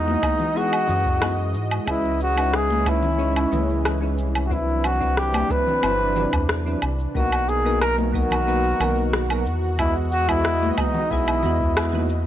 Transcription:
Already playing: E2 E3 G#3 B3 D#4 F#4 D#5
0.07 high conga, cabasa
0.22 E3 G#3 B3 D#4 F#4, kick, cabasa, low woodblock
0.40 low conga, cabasa
0.54 E3 G#3 B3 D#4 F#4 G#4, cabasa
0.73 cabasa, low woodblock
0.88 F#2, low conga, cabasa
1.06 kick, cabasa
1.20 E3 G#3 B3 D#4 F#4, cross-stick, cabasa, low woodblock
1.39 cabasa
1.54 G#2, cabasa
1.71 cabasa, low woodblock
1.86 C#2 E3 G#3 C#4 E4 B4 D#5, kick, cabasa, low woodblock
2.05 cabasa
2.21 F#4, cabasa
2.36 G#3 C#4 D#4 E4 B4, cabasa, low woodblock
2.54 G#4, cross-stick, cabasa
2.70 high conga, cabasa
2.85 G#3 C#4 D#4 E4 B4, kick, cabasa, low woodblock
3.03 low conga, cabasa
3.18 G#3 C#4 D#4 E4 C#5, cabasa
3.36 cabasa, low woodblock
3.51 C#2 G#3 C#4 E4 B4 D#5, high conga, low conga, cabasa
3.69 cabasa
3.85 cross-stick, cabasa, low woodblock
4.01 G#3 C#4 D#4 E4 B4, cabasa
4.18 C2, cabasa
4.35 cabasa, low woodblock
4.46 F#3 F#4
4.51 C3 C4 D4 E4 B4, kick, cabasa
4.68 cabasa
4.84 F#4, cabasa, low woodblock
4.99 F#3 C4 D4 E4 B4, kick, cabasa
5.17 G4, cross-stick, cabasa
5.34 high conga, cabasa, low woodblock
5.49 F#3 C4 D4 E4 B4, kick, cabasa
5.67 low conga, cabasa
5.82 G1 F#3 C4 D4 E4 C5, cabasa, low woodblock
6.00 cabasa
6.15 F#3 C4 D4 E4 B4, low conga, cabasa
6.33 E2, kick, cabasa, low woodblock
6.49 cross-stick, cabasa
6.65 F#3 C4 D4 E4 B4, cabasa
6.82 C2, cabasa, low woodblock
6.99 cabasa
7.14 B1 D#3 F#3 A#3 B3 D#4 F#4 A#4, kick, cabasa
7.32 cabasa, low woodblock
7.49 G#4, cabasa
7.64 F#3 A#3 B3 D#4 A#4, cabasa
7.81 A#4, cross-stick, cabasa, low woodblock
7.98 high conga, cabasa
8.12 F#3 A#3 B3 D#4 F#4 A#4, kick, cabasa
8.31 low conga, cabasa, low woodblock
8.46 F#3 A#3 B3 D#4 B4, cabasa
8.65 cabasa
8.79 B1 F#3 A#3 B3 D#4 A#4, high conga, low conga, cabasa, low woodblock
8.98 cabasa
9.13 cross-stick, cabasa
9.29 F#3 A#3 B3 D#4 A#4, cabasa, low woodblock
9.46 E2 E3 G#3 D#5, cabasa
9.63 cabasa
9.78 E3 G#3 B3 E4 F#4 D#5, kick, cabasa, low woodblock
9.96 cabasa
10.12 F#4, cabasa
10.28 E3 G#3 B3 E4 F#4 D#5, kick, cabasa, low woodblock
10.45 cross-stick, cabasa
10.62 high conga, cabasa
10.72 E4
10.77 E3 G#3 B3 D#4 F#4, kick, cabasa, low woodblock
10.94 low conga, cabasa
11.10 B1 E3 G#3 B3 D#4 E4 G#4, kick, cabasa
11.28 cabasa, low woodblock
11.43 E2 E3 G#3 B3 F#4 D#5, low conga, cabasa
11.61 kick, cabasa
11.77 cross-stick, cabasa, low woodblock
11.93 E3 G#3 B3 D#4 F#4, high conga, low conga, cabasa
12.10 cabasa

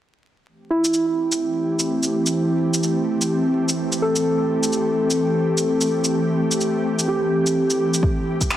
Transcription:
0.46 E3 A3 C4 G4
0.70 E4
0.85 shaker
0.94 shaker
1.32 shaker
1.79 shaker
2.03 shaker
2.26 shaker
2.74 shaker
2.83 shaker
3.22 shaker
3.69 shaker
3.92 shaker
4.02 A4
4.16 shaker
4.63 shaker
4.72 shaker
5.11 shaker
5.58 shaker
5.81 shaker
6.04 shaker
6.52 shaker
6.61 shaker
6.99 shaker
7.08 G4
7.47 shaker
7.70 shaker
7.94 shaker
8.03 A2 C4 D4, kick
8.41 kick, shaker
8.50 finger snap, shaker

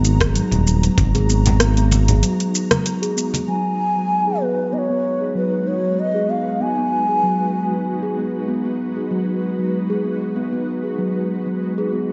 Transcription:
Already playing: G#1 G#3 D#4 F#4 A#5
0.04 shaker
0.20 G#4, kick, cross-stick, closed hi-hat, muted conga, shaker
0.35 F#3, closed hi-hat, shaker
0.51 D#1, closed hi-hat, low conga, shaker
0.67 shaker
0.83 F#3, closed hi-hat, shaker
0.98 G#1, kick, closed hi-hat, high conga, shaker
1.15 G#4, closed hi-hat, muted conga, shaker
1.29 B3, shaker
1.46 closed hi-hat, muted conga, low conga, shaker
1.60 B3, cross-stick, closed hi-hat, shaker
1.77 B3, closed hi-hat, shaker
1.92 muted conga, high conga, shaker
2.08 G#4, closed hi-hat, low conga, shaker
2.23 F#3, closed hi-hat, shaker
2.40 closed hi-hat, shaker
2.55 shaker
2.71 F#3, cross-stick, closed hi-hat, high conga, shaker
2.86 closed hi-hat, shaker
3.02 G#4, closed hi-hat, shaker
3.17 B3, shaker
3.34 closed hi-hat, muted conga, shaker
3.47 F#3 G#3 D#4 F#4 B4 G#5
3.96 F#3
4.27 G#4
4.42 B3 B4
4.73 B3 D#5
4.78 C#5
4.90 B3
5.21 G#4
5.35 F#3 B4
5.68 C#5
5.83 F#3
5.99 D#5
6.14 G#4
6.29 B3 F5
6.61 B3 G#5
6.78 B3
7.09 G#4
7.23 F#3
7.72 F#3
8.03 G#4
8.17 B3
8.48 B3
8.65 B3
8.97 G#4
9.11 F#3
9.59 F#3
9.90 G#4
10.04 B3
10.36 B3
10.52 B3
10.84 G#4
10.98 F#3
11.47 F#3
11.78 G#4
11.92 B3

